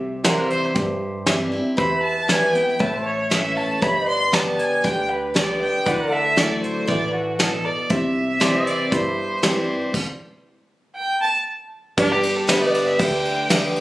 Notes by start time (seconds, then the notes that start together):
Already playing: C2 C3 G4 C5 E5
0.24 E3 G3 C4 E4 G4 A#4 C5 E5 F#5, snare, closed hi-hat
0.50 C5 E5, closed hi-hat
0.74 G2 G4 C5 G5, kick, closed hi-hat
1.26 E3 G3 C4 E4 G4 C5 E5, snare, closed hi-hat
1.52 C4 E4
1.77 E2 G4 B4 C5 E5 B5, kick, closed hi-hat
1.98 B4
2.03 A5
2.28 E3 G3 B3 E4 G4 B4 E5 G#5, snare, closed hi-hat
2.53 B3 E4 G5, closed hi-hat
2.79 A1 A2 A4 B4 C#5 E5 A5, kick, closed hi-hat
3.05 C#5
3.30 E3 A3 C#4 E4 A4 C#5 E5, snare, closed hi-hat
3.57 A5
3.82 G1 G2 G4 B4 C#5 D5 E5 B5, kick, closed hi-hat
4.08 B4 D5 C6
4.32 D3 G3 B3 G4 B4 D5 A5, snare, closed hi-hat
4.59 G#5, closed hi-hat
4.84 D2 D3 G4 B4 D5 G5, kick, closed hi-hat
5.11 B4
5.34 D3 G3 B3 G4 B4 D5, snare, closed hi-hat
5.62 G5
5.86 D2 D3 E4 F#4 B4 D5 F#5, kick, closed hi-hat
6.11 A4 E5
6.36 F#3 A3 E4 F#4 D5, snare, closed hi-hat
6.63 C5, closed hi-hat
6.87 A1 E3 E4 F#4 D5 E5, kick, closed hi-hat
7.13 F#4
7.38 B2 E4 F#4 A4 D5, snare, closed hi-hat
7.65 D5
7.90 C2 C3 E4 G4 C5 E5, kick, closed hi-hat
8.40 E3 G3 C4 E4 G4 C5 D5, snare, closed hi-hat
8.66 D5 E5, closed hi-hat
8.91 G1 G2 E4 G4 C5 B5, kick, closed hi-hat
9.42 E3 G3 C4 E4 G4 D5, snare, closed hi-hat
9.94 kick, crash
10.96 G5
11.21 A5
11.97 G1 G2 D4 G4 B4 D5, kick, ride
12.12 G4
12.23 ride
12.37 A4
12.47 D3 G3 B3 D4 G4 B4 C5 E5, snare, ride
12.62 D5
12.69 B4
12.74 D5, ride
12.87 E5
12.99 D2 D3 D4 G4 B4 E5 G5, kick, ride
13.25 ride
13.49 D3 G3 B3 D4 G4 B4 E5, snare, ride
13.76 ride